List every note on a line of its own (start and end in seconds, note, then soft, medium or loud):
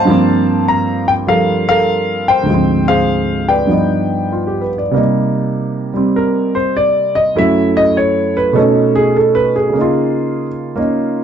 0.00 1.04 C5 medium
0.00 1.04 F5 medium
0.00 0.64 A5 loud
0.05 2.46 G2 medium
0.05 1.25 F3 medium
0.09 2.48 A#3 medium
0.09 2.49 C4 medium
0.68 1.05 A#5 medium
1.08 1.13 G5 medium
1.27 2.47 F3 soft
1.27 2.48 G3 soft
1.27 1.69 A4 medium
1.27 1.68 A#4 medium
1.27 1.67 F5 medium
1.69 2.45 A4 medium
1.69 2.45 A#4 medium
1.69 2.30 F5 medium
2.28 2.87 C5 medium
2.28 2.84 G5 medium
2.43 3.67 D2 soft
2.43 3.68 G#2 soft
2.50 3.67 F3 soft
2.54 3.72 C4 medium
2.88 3.66 G#4 medium
2.88 3.66 C5 medium
2.88 3.51 F5 medium
3.49 4.60 B4 soft
3.49 4.69 D5 soft
3.49 4.69 G5 medium
3.67 4.92 G2 soft
3.67 4.93 F3 soft
3.67 4.94 B3 soft
3.72 4.94 D#4 soft
4.32 4.61 F4 soft
4.47 4.74 G4 soft
4.61 4.81 B4 soft
4.78 5.00 D5 soft
4.91 7.36 C3 medium
4.91 5.92 G3 soft
4.91 7.37 A#3 soft
4.96 7.38 D#4 medium
5.94 7.36 G3 soft
5.94 7.37 C4 soft
6.16 6.55 A#4 medium
6.55 6.75 C5 medium
6.77 7.16 D5 medium
7.15 7.36 D#5 medium
7.35 8.56 F#2 medium
7.35 8.56 F#3 soft
7.35 8.53 A3 soft
7.35 8.56 E4 medium
7.35 7.77 E5 medium
7.77 7.96 D#5 medium
7.97 8.35 C#5 medium
8.37 8.56 B4 medium
8.53 9.74 B2 medium
8.53 9.75 A3 medium
8.53 9.76 C#4 medium
8.53 8.95 A4 medium
8.58 9.76 D#4 medium
8.95 9.15 G#4 medium
9.17 9.36 A4 medium
9.35 9.55 B4 medium
9.56 10.46 G#4 medium
9.70 11.24 C#3 medium
9.70 10.74 A#3 soft
9.78 10.77 D#4 soft
9.78 11.24 F4 medium
10.76 11.24 A#3 soft
10.76 11.24 C#4 soft
10.76 11.24 D#4 soft